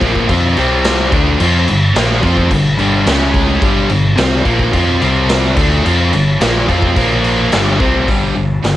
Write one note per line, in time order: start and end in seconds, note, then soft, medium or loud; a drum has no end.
0.01 0.27 A#1 medium
0.01 0.28 A#2 medium
0.01 0.28 F3 medium
0.01 0.29 A#3 loud
0.01 kick medium
0.01 crash medium
0.15 kick medium
0.29 0.55 F2 medium
0.29 0.56 F3 medium
0.29 0.57 C4 medium
0.29 0.57 F4 loud
0.29 kick loud
0.29 crash medium
0.57 1.09 C2 medium
0.57 1.12 C3 medium
0.57 1.12 G3 medium
0.57 1.12 C4 medium
0.57 crash medium
0.84 snare loud
0.84 crash medium
1.12 1.38 D2 medium
1.12 1.39 D3 medium
1.12 1.40 A3 loud
1.12 1.40 D4 medium
1.12 kick loud
1.12 crash medium
1.40 1.66 F2 loud
1.40 1.67 F3 medium
1.40 1.67 C4 loud
1.40 1.68 F4 loud
1.40 crash medium
1.68 1.94 G1 medium
1.68 1.91 G2 medium
1.68 1.91 D3 medium
1.68 crash medium
1.95 2.21 A#1 loud
1.95 2.21 A#2 medium
1.95 2.20 F3 loud
1.95 2.23 A#3 medium
1.95 snare loud
1.95 crash medium
2.22 2.49 F2 medium
2.22 2.49 F3 medium
2.22 2.50 C4 loud
2.22 2.50 F4 loud
2.22 kick medium
2.22 crash medium
2.37 kick medium
2.51 2.77 G1 medium
2.51 2.73 G2 medium
2.51 2.74 D3 medium
2.51 kick medium
2.51 crash medium
2.77 3.05 G1 loud
2.77 3.05 G2 medium
2.77 3.05 D3 medium
2.77 3.06 G3 medium
2.77 crash medium
3.06 3.58 C#2 medium
3.06 3.61 C#3 medium
3.06 3.62 G#3 medium
3.06 3.62 C#4 loud
3.06 snare loud
3.06 crash medium
3.34 kick medium
3.34 crash medium
3.62 3.88 G1 medium
3.62 3.88 G2 loud
3.62 3.89 D3 loud
3.62 3.90 G3 loud
3.62 kick loud
3.62 crash medium
3.89 4.16 G1 medium
3.89 4.12 G2 medium
3.89 4.12 D3 medium
3.89 crash medium
4.16 4.44 C2 loud
4.16 4.43 C3 medium
4.16 4.44 G3 medium
4.16 4.44 C4 loud
4.16 snare loud
4.16 crash medium
4.44 4.71 A#1 medium
4.44 4.72 A#2 medium
4.44 4.71 F3 medium
4.44 4.72 A#3 loud
4.44 kick medium
4.44 crash medium
4.59 kick medium
4.72 4.99 F2 loud
4.72 5.00 F3 medium
4.72 5.00 C4 medium
4.72 5.01 F4 loud
4.72 kick loud
4.72 crash medium
5.01 5.53 C2 loud
5.01 5.55 C3 medium
5.01 5.56 G3 loud
5.01 5.56 C4 loud
5.01 crash medium
5.29 snare loud
5.29 crash medium
5.55 5.83 D2 medium
5.55 5.83 D3 medium
5.55 5.84 A3 loud
5.55 5.84 D4 loud
5.55 kick loud
5.55 crash loud
5.84 6.11 F2 medium
5.84 6.12 F3 medium
5.84 6.12 C4 loud
5.84 6.12 F4 loud
5.84 crash medium
6.11 6.39 G1 medium
6.11 6.34 G2 medium
6.11 6.35 D3 medium
6.11 crash medium
6.40 6.68 A#1 loud
6.40 6.67 A#2 medium
6.40 6.67 F3 medium
6.40 6.68 A#3 loud
6.40 snare loud
6.40 crash medium
6.68 6.95 F2 medium
6.68 6.95 F3 medium
6.68 6.96 C4 loud
6.68 6.96 F4 loud
6.68 kick medium
6.68 crash medium
6.82 kick medium
6.96 7.49 A#1 loud
6.96 7.51 A#2 medium
6.96 7.51 F3 loud
6.96 7.52 A#3 loud
6.96 kick loud
6.96 crash medium
7.24 crash medium
7.52 7.79 G1 loud
7.52 7.79 G2 medium
7.52 7.79 D3 loud
7.52 7.79 G3 loud
7.52 snare loud
7.52 crash medium
7.80 8.06 C2 medium
7.80 8.07 C3 medium
7.80 8.08 G3 medium
7.80 8.08 C4 loud
7.80 kick medium
7.80 crash medium
8.08 8.29 G1 medium
8.08 8.34 G2 medium
8.08 8.35 D3 loud
8.08 8.35 G3 loud
8.08 kick loud
8.08 open hi-hat medium
8.36 8.58 G1 medium
8.36 8.61 G2 medium
8.36 8.61 D3 medium
8.64 8.77 G1 medium
8.64 8.77 G2 medium
8.64 8.77 D3 medium
8.64 snare loud
8.64 open hi-hat soft